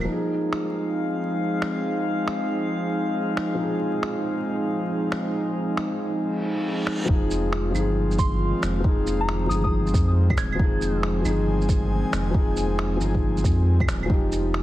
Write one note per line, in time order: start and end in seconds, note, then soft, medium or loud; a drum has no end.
0.00 0.04 F3 medium
0.00 0.09 D#4 medium
0.00 0.10 G4 medium
0.00 0.10 A#4 loud
0.00 claves medium
0.04 3.53 F3 medium
0.04 7.10 F5 medium
0.09 7.05 F3 medium
0.09 7.05 G#3 medium
0.09 7.05 C4 medium
0.09 3.57 D#4 medium
0.09 7.05 D#4 medium
0.09 7.05 G#4 medium
0.09 3.59 G#4 medium
0.53 finger snap medium
1.62 finger snap medium
2.28 finger snap medium
3.37 finger snap loud
3.55 7.04 F3 medium
3.59 7.07 D#4 medium
3.59 7.09 G#4 medium
4.03 finger snap loud
5.12 finger snap loud
5.77 finger snap loud
6.21 reverse cymbal medium
6.87 finger snap loud
7.05 7.74 F1 loud
7.05 14.06 D#3 medium
7.05 7.69 F3 loud
7.05 14.05 F3 medium
7.05 14.06 G#3 medium
7.05 14.06 C4 medium
7.05 7.73 D#4 medium
7.05 10.56 F4 medium
7.05 kick loud
7.13 7.75 G#4 loud
7.31 shaker medium
7.53 finger snap loud
7.71 8.53 G1 medium
7.71 8.79 F3 medium
7.71 8.82 D#4 medium
7.71 claves soft
7.71 shaker medium
7.79 8.85 G#4 medium
8.11 shaker soft
8.18 8.81 C6 medium
8.18 kick loud
8.18 shaker medium
8.63 8.83 F1 loud
8.63 finger snap loud
8.63 shaker medium
8.80 9.49 F1 loud
8.80 9.45 F3 medium
8.80 kick loud
8.84 9.48 D#4 medium
8.84 9.50 G#4 medium
9.07 shaker medium
9.21 9.43 A#5 medium
9.29 finger snap loud
9.46 9.93 G1 medium
9.46 10.54 F3 medium
9.46 9.59 D#6 medium
9.50 10.58 D#4 medium
9.50 10.60 G#4 medium
9.50 shaker medium
9.64 9.69 D#6 medium
9.64 kick medium
9.87 shaker soft
9.94 10.36 F2 loud
9.94 kick loud
9.94 shaker medium
10.30 kick loud
10.30 claves medium
10.37 10.58 D#1 medium
10.37 11.00 G#6 medium
10.37 finger snap loud
10.37 shaker medium
10.52 11.20 F3 loud
10.52 claves medium
10.59 11.24 F1 loud
10.59 11.23 D#4 medium
10.59 14.06 G#5 medium
10.59 kick loud
10.64 11.25 G#4 loud
10.81 shaker medium
11.03 finger snap loud
11.21 12.03 G1 medium
11.21 12.29 F3 medium
11.21 12.33 D#4 medium
11.21 claves soft
11.21 shaker medium
11.29 12.35 G#4 medium
11.61 shaker soft
11.69 kick loud
11.69 shaker medium
12.13 12.33 F1 loud
12.13 finger snap loud
12.13 shaker medium
12.31 12.99 F1 loud
12.31 12.95 F3 medium
12.31 12.98 D#4 medium
12.31 kick loud
12.38 13.00 G#4 loud
12.57 shaker medium
12.79 finger snap loud
12.97 13.43 G1 medium
12.97 14.04 F3 medium
13.01 14.08 D#4 medium
13.01 shaker medium
13.05 14.10 G#4 medium
13.14 kick medium
13.37 shaker soft
13.44 13.87 F2 loud
13.44 kick loud
13.44 shaker medium
13.80 kick loud
13.80 claves medium
13.88 14.09 D#1 medium
13.88 finger snap loud
13.88 shaker medium
14.03 14.63 F3 medium
14.03 claves soft
14.10 14.63 F1 loud
14.10 14.63 G3 medium
14.10 14.63 A#3 medium
14.10 14.63 D#4 medium
14.10 kick loud
14.14 14.63 G4 loud
14.32 shaker medium
14.54 finger snap loud